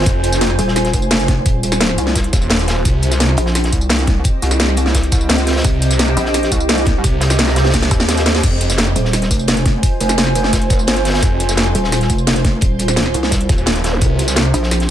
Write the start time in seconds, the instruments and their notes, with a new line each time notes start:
Already playing: ambient pad F4 C5 G#5
0.02 snare, closed hi-hat
0.06 detuned saw bass F1, kick, closed hi-hat, tambourine
0.23 closed hi-hat, tambourine
0.32 snare, closed hi-hat, tambourine
0.41 snare, closed hi-hat, tambourine
0.50 snare
0.59 wobble bass D#1, closed hi-hat, tambourine
0.68 snare
0.76 snare, closed hi-hat, tambourine
0.85 snare, closed hi-hat
0.93 wobble bass F1, kick, closed hi-hat, tambourine
1.02 tambourine
1.11 snare, closed hi-hat, tambourine
1.20 snare, closed hi-hat
1.28 kick, snare, closed hi-hat
1.46 wobble bass D#1, kick, closed hi-hat, tambourine
1.63 closed hi-hat, tambourine
1.72 snare, closed hi-hat, tambourine
1.80 snare, closed hi-hat, tambourine
1.89 snare
1.98 wobble bass C2, closed hi-hat, tambourine
2.06 snare
2.15 kick, snare, closed hi-hat, tambourine
2.24 closed hi-hat
2.33 detuned saw bass D#1, kick, snare, closed hi-hat, tambourine
2.42 tambourine
2.50 snare, closed hi-hat, tambourine
2.59 snare, closed hi-hat
2.68 snare, closed hi-hat
2.76 snare
2.85 detuned saw bass C2, ambient pad C4, kick, closed hi-hat, tambourine
2.99 ambient pad G4, closed hi-hat
3.03 closed hi-hat, tambourine
3.10 ambient pad D#5, snare, closed hi-hat, tambourine
3.20 snare, closed hi-hat, tambourine
3.29 ambient pad C5, snare
3.37 wobble bass A#1, closed hi-hat, tambourine
3.46 snare
3.55 snare, closed hi-hat, tambourine
3.64 snare, closed hi-hat
3.72 wobble bass C2, kick, closed hi-hat, tambourine
3.81 tambourine
3.89 snare, closed hi-hat, tambourine
3.98 snare, closed hi-hat
4.07 kick, snare, closed hi-hat
4.24 kick, closed hi-hat, tambourine
4.42 wobble bass C2, closed hi-hat, tambourine
4.51 snare, closed hi-hat, tambourine
4.60 snare, closed hi-hat, tambourine
4.68 snare
4.77 closed hi-hat, tambourine
4.86 snare
4.94 kick, snare, closed hi-hat, tambourine
5.03 closed hi-hat
5.12 kick, snare, closed hi-hat, tambourine
5.21 tambourine
5.29 wobble bass C#2, snare, closed hi-hat, tambourine
5.38 snare, closed hi-hat
5.47 snare, closed hi-hat
5.51 snare, closed hi-hat
5.56 snare, closed hi-hat
5.60 snare, closed hi-hat
5.64 detuned saw bass C2, kick, closed hi-hat, tambourine
5.82 closed hi-hat, tambourine
5.91 snare, closed hi-hat, tambourine
5.99 snare, closed hi-hat, tambourine
6.08 snare
6.17 wobble bass A#1, closed hi-hat, tambourine
6.25 snare
6.34 snare, closed hi-hat, tambourine
6.43 snare, closed hi-hat
6.52 wobble bass C2, kick, closed hi-hat, tambourine
6.60 tambourine
6.69 snare, closed hi-hat, tambourine
6.78 snare, closed hi-hat
6.85 kick, snare, closed hi-hat
7.04 detuned saw bass C2, kick, closed hi-hat, tambourine
7.21 snare, closed hi-hat, tambourine
7.30 snare, closed hi-hat, tambourine
7.39 snare, closed hi-hat, tambourine
7.47 snare, closed hi-hat
7.56 snare, closed hi-hat, tambourine
7.64 snare, closed hi-hat
7.70 snare, closed hi-hat
7.74 kick, snare, closed hi-hat, open hi-hat, tambourine
7.82 snare, closed hi-hat
7.91 wobble bass D#2, kick, snare, closed hi-hat, tambourine
8.00 snare, tambourine
8.08 snare, closed hi-hat, tambourine
8.17 snare, closed hi-hat, tambourine
8.26 snare, closed hi-hat
8.34 snare, closed hi-hat
8.43 detuned saw bass F1, ambient pad F4, kick, closed hi-hat, crash, tambourine
8.61 closed hi-hat, tambourine
8.68 ambient pad G#5, snare, closed hi-hat, tambourine
8.78 snare, closed hi-hat, tambourine
8.87 snare
8.96 wobble bass D#1, closed hi-hat, tambourine
9.05 snare
9.13 snare, closed hi-hat, tambourine
9.22 snare, closed hi-hat
9.31 wobble bass F1, kick, closed hi-hat, tambourine
9.39 tambourine
9.48 snare, closed hi-hat, tambourine
9.56 snare, closed hi-hat
9.66 kick, snare, closed hi-hat
9.83 kick, closed hi-hat, tambourine
10.00 wobble bass F1, closed hi-hat, tambourine
10.09 snare, closed hi-hat, tambourine
10.18 snare, closed hi-hat, tambourine
10.27 snare
10.35 closed hi-hat, tambourine
10.43 snare
10.53 kick, snare, closed hi-hat, tambourine
10.62 closed hi-hat
10.70 kick, snare, closed hi-hat, tambourine
10.79 tambourine
10.87 wobble bass G1, snare, closed hi-hat, tambourine
10.96 snare, closed hi-hat
11.05 snare, closed hi-hat
11.09 snare, closed hi-hat
11.14 snare, closed hi-hat
11.19 snare, closed hi-hat
11.23 detuned saw bass F1, kick, closed hi-hat, tambourine
11.40 closed hi-hat, tambourine
11.49 snare, closed hi-hat, tambourine
11.57 snare, closed hi-hat, tambourine
11.66 snare
11.75 wobble bass D#1, closed hi-hat, tambourine
11.84 snare
11.92 snare, closed hi-hat, tambourine
12.01 snare, closed hi-hat
12.10 wobble bass F1, kick, closed hi-hat, tambourine
12.18 tambourine
12.27 snare, closed hi-hat, tambourine
12.36 snare, closed hi-hat
12.44 kick, snare, closed hi-hat
12.61 wobble bass D#1, kick, closed hi-hat, tambourine
12.79 closed hi-hat, tambourine
12.88 snare, closed hi-hat, tambourine
12.96 snare, closed hi-hat, tambourine
13.06 snare
13.14 wobble bass C2, closed hi-hat, tambourine
13.23 snare
13.31 kick, snare, closed hi-hat, tambourine
13.41 closed hi-hat
13.49 detuned saw bass D#1, kick, snare, closed hi-hat, tambourine
13.58 tambourine
13.66 snare, closed hi-hat, tambourine
13.75 snare, closed hi-hat
13.84 snare, closed hi-hat
13.92 snare, zap
14.01 detuned saw bass C2, ambient pad C4, kick, closed hi-hat, tambourine
14.18 ambient pad G4, closed hi-hat, tambourine
14.28 snare, closed hi-hat, tambourine
14.36 snare, closed hi-hat, tambourine
14.45 snare
14.54 wobble bass A#1, closed hi-hat, tambourine
14.63 snare
14.70 ambient pad D#5, snare, closed hi-hat, tambourine
14.80 snare, closed hi-hat